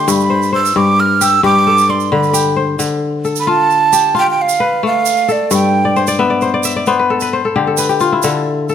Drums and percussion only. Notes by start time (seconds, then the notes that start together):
0.08 shaker
0.20 shaker
0.42 shaker
0.65 shaker
1.21 shaker
1.78 shaker
2.00 shaker
2.23 shaker
2.34 shaker
2.79 shaker
3.25 shaker
3.36 shaker
3.70 shaker
3.93 shaker
4.16 shaker
4.49 shaker
5.05 shaker
5.17 shaker
5.28 shaker
5.51 shaker
5.96 shaker
6.07 shaker
6.41 shaker
6.63 shaker
6.86 shaker
7.20 shaker
7.77 shaker
8.00 shaker
8.23 shaker
8.69 shaker